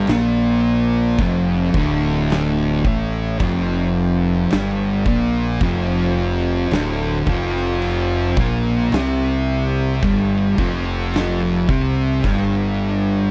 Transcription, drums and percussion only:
0.07 snare loud
0.07 crash medium
1.18 kick loud
1.18 crash medium
1.74 kick loud
2.30 snare loud
2.30 crash medium
2.85 kick loud
3.40 kick loud
3.40 crash medium
4.50 snare loud
4.50 crash medium
5.06 kick loud
5.61 kick loud
5.61 crash medium
6.71 snare loud
6.71 crash medium
7.27 kick loud
7.56 snare soft
7.82 crash medium
8.37 kick loud
8.92 snare loud
8.92 crash medium
10.03 kick loud
10.03 crash medium
10.58 kick loud
11.14 snare loud
11.14 crash medium
11.69 kick loud
12.24 kick medium
12.24 crash medium

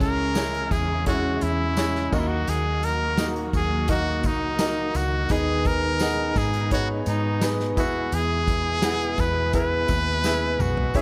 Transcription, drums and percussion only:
0.01 kick medium
0.01 closed hi-hat medium
0.01 tambourine soft
0.35 snare loud
0.35 closed hi-hat medium
0.35 tambourine medium
0.54 closed hi-hat soft
0.71 kick medium
0.71 closed hi-hat medium
0.71 tambourine soft
1.06 kick medium
1.06 closed hi-hat loud
1.06 tambourine soft
1.41 closed hi-hat medium
1.41 tambourine soft
1.77 snare loud
1.77 closed hi-hat medium
1.77 tambourine medium
1.95 snare soft
2.12 kick loud
2.12 tambourine medium
2.12 crash medium
2.47 closed hi-hat medium
2.47 tambourine soft
2.83 closed hi-hat medium
2.83 tambourine soft
3.17 snare loud
3.17 closed hi-hat medium
3.17 tambourine medium
3.36 closed hi-hat soft
3.53 kick loud
3.53 closed hi-hat medium
3.53 tambourine soft
3.88 kick loud
3.88 closed hi-hat medium
3.88 tambourine soft
4.23 kick loud
4.23 closed hi-hat medium
4.23 tambourine soft
4.59 snare loud
4.59 closed hi-hat medium
4.59 tambourine medium
4.95 closed hi-hat medium
4.95 tambourine medium
5.29 kick loud
5.29 closed hi-hat medium
5.29 tambourine soft
5.64 kick medium
5.64 closed hi-hat medium
5.64 tambourine soft
6.00 snare loud
6.00 closed hi-hat loud
6.00 tambourine medium
6.36 kick medium
6.36 closed hi-hat medium
6.36 tambourine soft
6.54 closed hi-hat soft
6.71 kick medium
6.71 closed hi-hat loud
6.71 tambourine soft
7.06 closed hi-hat medium
7.06 tambourine medium
7.41 snare loud
7.41 closed hi-hat medium
7.41 tambourine medium
7.60 snare soft
7.77 kick loud
7.77 closed hi-hat medium
7.77 tambourine medium
8.12 closed hi-hat medium
8.12 tambourine soft
8.47 kick medium
8.47 closed hi-hat medium
8.47 tambourine soft
8.82 snare loud
8.82 closed hi-hat medium
8.82 tambourine medium
9.01 closed hi-hat soft
9.18 kick medium
9.18 closed hi-hat medium
9.18 tambourine medium
9.53 kick medium
9.53 closed hi-hat loud
9.53 tambourine soft
9.88 kick loud
9.88 closed hi-hat medium
9.88 tambourine medium
10.24 snare medium
10.24 tambourine medium
10.60 mid tom medium
10.60 tambourine medium
10.77 floor tom medium
10.94 kick loud
10.94 closed hi-hat medium
10.94 tambourine soft

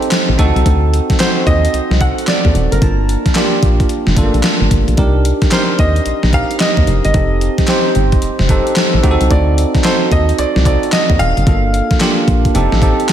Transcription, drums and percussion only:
0.02 closed hi-hat medium
0.11 snare loud
0.11 clap medium
0.11 closed hi-hat medium
0.39 kick medium
0.39 closed hi-hat medium
0.56 closed hi-hat soft
0.66 kick loud
0.66 closed hi-hat medium
0.94 closed hi-hat medium
1.10 kick loud
1.10 snare medium
1.10 closed hi-hat medium
1.20 snare loud
1.20 clap medium
1.20 closed hi-hat medium
1.47 kick loud
1.47 closed hi-hat medium
1.65 closed hi-hat medium
1.74 closed hi-hat medium
1.91 snare medium
2.01 kick loud
2.01 closed hi-hat medium
2.18 closed hi-hat soft
2.27 snare loud
2.27 clap medium
2.27 closed hi-hat medium
2.45 kick medium
2.55 closed hi-hat medium
2.72 closed hi-hat medium
2.82 kick loud
2.82 closed hi-hat medium
3.09 closed hi-hat medium
3.26 kick loud
3.26 snare medium
3.26 closed hi-hat soft
3.35 snare loud
3.35 clap medium
3.35 closed hi-hat medium
3.63 kick medium
3.63 closed hi-hat medium
3.80 kick medium
3.80 closed hi-hat medium
3.89 closed hi-hat medium
4.07 snare medium
4.17 kick loud
4.17 closed hi-hat medium
4.34 closed hi-hat medium
4.43 snare loud
4.43 clap medium
4.43 closed hi-hat medium
4.71 kick medium
4.71 closed hi-hat medium
4.88 closed hi-hat medium
4.97 kick loud
4.97 closed hi-hat medium
5.25 closed hi-hat medium
5.42 kick loud
5.42 snare medium
5.42 closed hi-hat medium
5.51 snare loud
5.51 clap medium
5.51 closed hi-hat medium
5.79 kick medium
5.79 closed hi-hat medium
5.96 closed hi-hat medium
6.06 closed hi-hat medium
6.23 snare medium
6.33 kick loud
6.33 closed hi-hat medium
6.51 closed hi-hat medium
6.60 snare loud
6.60 clap medium
6.60 closed hi-hat medium
6.77 kick medium
6.87 closed hi-hat medium
7.05 closed hi-hat soft
7.14 kick loud
7.14 closed hi-hat medium
7.41 closed hi-hat medium
7.58 kick medium
7.58 snare medium
7.58 closed hi-hat medium
7.67 snare loud
7.67 clap medium
7.67 closed hi-hat medium
7.95 closed hi-hat medium
8.12 kick medium
8.12 closed hi-hat medium
8.22 closed hi-hat medium
8.39 snare medium
8.49 kick loud
8.49 closed hi-hat medium
8.67 closed hi-hat soft
8.76 snare loud
8.76 clap medium
8.76 closed hi-hat medium
9.04 kick medium
9.04 closed hi-hat medium
9.21 closed hi-hat medium
9.31 kick loud
9.31 closed hi-hat medium
9.58 closed hi-hat medium
9.75 kick medium
9.75 snare medium
9.75 closed hi-hat medium
9.84 snare loud
9.84 clap medium
9.84 closed hi-hat medium
10.12 kick loud
10.12 closed hi-hat medium
10.29 closed hi-hat medium
10.38 closed hi-hat medium
10.56 snare medium
10.65 kick medium
10.65 closed hi-hat medium
10.83 closed hi-hat soft
10.92 snare loud
10.92 clap medium
10.92 closed hi-hat medium
11.10 kick medium
11.20 closed hi-hat medium
11.37 closed hi-hat medium
11.47 kick loud
11.47 closed hi-hat medium
11.74 closed hi-hat medium
11.91 kick loud
11.91 snare medium
11.91 closed hi-hat medium
12.00 snare loud
12.00 clap medium
12.00 closed hi-hat medium
12.28 kick medium
12.28 closed hi-hat medium
12.45 kick medium
12.45 closed hi-hat medium
12.55 closed hi-hat medium
12.72 snare medium
12.82 kick loud
12.82 closed hi-hat medium
13.00 closed hi-hat medium
13.09 snare loud
13.09 clap medium
13.09 closed hi-hat medium

